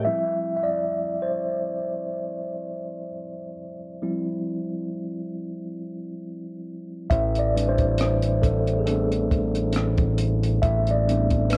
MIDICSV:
0, 0, Header, 1, 4, 480
1, 0, Start_track
1, 0, Key_signature, -1, "minor"
1, 0, Tempo, 882353
1, 26, Time_signature, 4, 2, 24, 8
1, 6295, End_track
2, 0, Start_track
2, 0, Title_t, "Tine electric piano"
2, 0, Program_c, 0, 4
2, 0, Control_c, 0, 64, 127
2, 24, Note_on_c, 0, 76, 84
2, 26, Note_on_c, 0, 53, 43
2, 29, Note_on_c, 0, 55, 36
2, 32, Note_on_c, 0, 60, 35
2, 33, Control_c, 0, 64, 0
2, 34, Note_on_c, 0, 64, 46
2, 133, Control_c, 0, 64, 127
2, 300, Note_off_c, 0, 76, 0
2, 307, Note_on_c, 0, 76, 54
2, 343, Note_off_c, 0, 76, 0
2, 344, Note_on_c, 0, 74, 71
2, 665, Note_on_c, 0, 72, 69
2, 674, Note_off_c, 0, 74, 0
2, 1683, Note_off_c, 0, 72, 0
2, 1924, Note_off_c, 0, 53, 0
2, 1925, Note_off_c, 0, 55, 0
2, 1927, Note_off_c, 0, 60, 0
2, 1928, Note_off_c, 0, 64, 0
2, 2186, Note_on_c, 0, 53, 46
2, 2188, Note_on_c, 0, 55, 41
2, 2190, Note_on_c, 0, 60, 42
2, 2192, Note_on_c, 0, 64, 49
2, 3844, Note_off_c, 0, 53, 0
2, 3845, Note_off_c, 0, 55, 0
2, 3846, Note_off_c, 0, 60, 0
2, 3847, Note_off_c, 0, 64, 0
2, 3862, Note_on_c, 0, 76, 85
2, 3871, Control_c, 0, 64, 0
2, 3961, Control_c, 0, 64, 127
2, 4012, Note_off_c, 0, 76, 0
2, 4020, Note_on_c, 0, 74, 78
2, 4106, Note_on_c, 0, 55, 47
2, 4109, Note_on_c, 0, 71, 45
2, 4111, Note_on_c, 0, 60, 43
2, 4114, Note_on_c, 0, 62, 51
2, 4172, Note_off_c, 0, 74, 0
2, 4182, Note_on_c, 0, 72, 79
2, 4562, Note_off_c, 0, 72, 0
2, 4579, Note_on_c, 0, 69, 67
2, 4783, Note_on_c, 0, 68, 52
2, 4794, Note_off_c, 0, 69, 0
2, 4815, Note_off_c, 0, 55, 0
2, 4816, Note_off_c, 0, 60, 0
2, 4819, Note_off_c, 0, 62, 0
2, 4819, Note_on_c, 0, 69, 67
2, 4821, Note_on_c, 0, 59, 38
2, 4822, Note_off_c, 0, 68, 0
2, 4822, Note_on_c, 0, 55, 41
2, 4822, Note_on_c, 0, 60, 38
2, 4825, Note_on_c, 0, 62, 43
2, 5041, Note_off_c, 0, 59, 0
2, 5042, Note_off_c, 0, 55, 0
2, 5042, Note_off_c, 0, 60, 0
2, 5043, Note_off_c, 0, 62, 0
2, 5520, Note_off_c, 0, 69, 0
2, 5777, Note_on_c, 0, 76, 88
2, 5933, Note_on_c, 0, 74, 75
2, 5946, Note_off_c, 0, 76, 0
2, 6005, Note_off_c, 0, 71, 0
2, 6019, Note_on_c, 0, 55, 47
2, 6023, Note_on_c, 0, 59, 42
2, 6023, Note_on_c, 0, 60, 44
2, 6027, Note_on_c, 0, 62, 49
2, 6256, Note_on_c, 0, 71, 73
2, 6269, Note_off_c, 0, 74, 0
2, 6295, Note_off_c, 0, 55, 0
2, 6295, Note_off_c, 0, 59, 0
2, 6295, Note_off_c, 0, 60, 0
2, 6295, Note_off_c, 0, 62, 0
2, 6295, Note_off_c, 0, 71, 0
2, 6295, End_track
3, 0, Start_track
3, 0, Title_t, "Analog synth bass"
3, 0, Program_c, 1, 38
3, 3872, Note_on_c, 1, 33, 69
3, 5767, Note_off_c, 1, 33, 0
3, 5788, Note_on_c, 1, 33, 73
3, 6295, Note_off_c, 1, 33, 0
3, 6295, End_track
4, 0, Start_track
4, 0, Title_t, "Drums"
4, 3866, Note_on_c, 9, 36, 79
4, 3868, Note_on_c, 9, 42, 62
4, 3920, Note_off_c, 9, 36, 0
4, 3922, Note_off_c, 9, 42, 0
4, 4000, Note_on_c, 9, 42, 36
4, 4054, Note_off_c, 9, 42, 0
4, 4121, Note_on_c, 9, 42, 52
4, 4175, Note_off_c, 9, 42, 0
4, 4234, Note_on_c, 9, 42, 33
4, 4237, Note_on_c, 9, 36, 58
4, 4288, Note_off_c, 9, 42, 0
4, 4291, Note_off_c, 9, 36, 0
4, 4341, Note_on_c, 9, 42, 64
4, 4357, Note_on_c, 9, 37, 92
4, 4396, Note_off_c, 9, 42, 0
4, 4411, Note_off_c, 9, 37, 0
4, 4474, Note_on_c, 9, 42, 42
4, 4528, Note_off_c, 9, 42, 0
4, 4588, Note_on_c, 9, 36, 74
4, 4590, Note_on_c, 9, 42, 61
4, 4596, Note_on_c, 9, 37, 26
4, 4643, Note_off_c, 9, 36, 0
4, 4645, Note_off_c, 9, 42, 0
4, 4651, Note_off_c, 9, 37, 0
4, 4719, Note_on_c, 9, 42, 38
4, 4774, Note_off_c, 9, 42, 0
4, 4826, Note_on_c, 9, 42, 54
4, 4880, Note_off_c, 9, 42, 0
4, 4961, Note_on_c, 9, 42, 35
4, 5015, Note_off_c, 9, 42, 0
4, 5066, Note_on_c, 9, 36, 71
4, 5069, Note_on_c, 9, 42, 57
4, 5121, Note_off_c, 9, 36, 0
4, 5123, Note_off_c, 9, 42, 0
4, 5195, Note_on_c, 9, 42, 39
4, 5250, Note_off_c, 9, 42, 0
4, 5292, Note_on_c, 9, 42, 66
4, 5311, Note_on_c, 9, 37, 84
4, 5347, Note_off_c, 9, 42, 0
4, 5366, Note_off_c, 9, 37, 0
4, 5428, Note_on_c, 9, 42, 36
4, 5432, Note_on_c, 9, 36, 74
4, 5482, Note_off_c, 9, 42, 0
4, 5486, Note_off_c, 9, 36, 0
4, 5538, Note_on_c, 9, 42, 58
4, 5593, Note_off_c, 9, 42, 0
4, 5676, Note_on_c, 9, 42, 41
4, 5730, Note_off_c, 9, 42, 0
4, 5782, Note_on_c, 9, 36, 83
4, 5782, Note_on_c, 9, 42, 62
4, 5836, Note_off_c, 9, 42, 0
4, 5837, Note_off_c, 9, 36, 0
4, 5912, Note_on_c, 9, 42, 34
4, 5967, Note_off_c, 9, 42, 0
4, 6033, Note_on_c, 9, 42, 49
4, 6087, Note_off_c, 9, 42, 0
4, 6150, Note_on_c, 9, 42, 36
4, 6154, Note_on_c, 9, 36, 58
4, 6204, Note_off_c, 9, 42, 0
4, 6208, Note_off_c, 9, 36, 0
4, 6257, Note_on_c, 9, 42, 69
4, 6272, Note_on_c, 9, 37, 90
4, 6295, Note_off_c, 9, 37, 0
4, 6295, Note_off_c, 9, 42, 0
4, 6295, End_track
0, 0, End_of_file